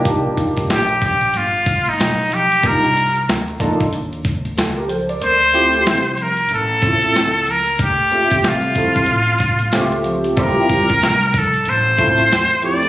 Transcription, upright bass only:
X:1
M:4/4
L:1/8
Q:"Swing 16ths" 1/4=93
K:Cdor
V:1 name="Upright bass" clef=bass
C,,2 B,,,2 G,,,2 =B,,,2 | C,,2 D,,2 E,,2 ^C,,2 | D,,2 C,,2 A,,,2 ^C,,2 | D,,2 C,,2 A,,,2 ^C,,2 |
D,,2 C,,2 A,,,2 =E,,2 |]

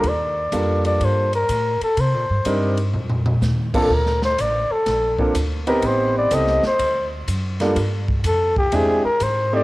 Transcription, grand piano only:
X:1
M:4/4
L:1/8
Q:"Swing" 1/4=124
K:Eblyd
V:1 name="Grand piano"
z2 [G,B,DFA]3 z3 | z2 [G,CDEB] z4 [B,CDFA] | z4 z [B,CDFA] z [=B,CEG=B]- | [=B,CEG=B]2 [B,CEGA] z4 [G,_B,DFA] |
z4 [^G,^B,D=E=G] z2 [A,B,_EG^B] |]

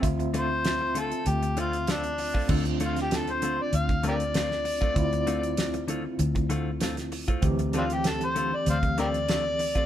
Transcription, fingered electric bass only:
X:1
M:4/4
L:1/8
Q:"Swing 16ths" 1/4=97
K:Dm
V:1 name="Fingered electric bass" clef=bass
D,,4 D,,4 | D,,4 D,,4 | D,,4 D,,4 | D,,4 D,,4 |]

